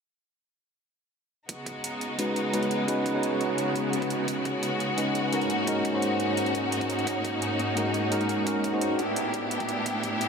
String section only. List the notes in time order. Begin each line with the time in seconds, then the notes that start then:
1.49 C#3 G#3 B3 D#4 F#4
3.58 C#4
5.50 G#2 A#3 D#4
8.99 A2 B3 D4 E4 G4